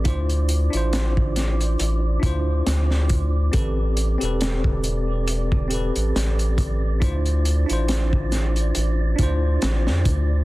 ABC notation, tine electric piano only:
X:1
M:4/4
L:1/16
Q:"Swing 16ths" 1/4=69
K:Ddor
V:1 name="Tine electric piano"
[DEFc]3 [DEFc]6- [DEFc] [DEFc]6 | [CGAB]3 [CGAB]6- [CGAB] [CGAB]6 | [DEFc]3 [DEFc]6- [DEFc] [DEFc]6 |]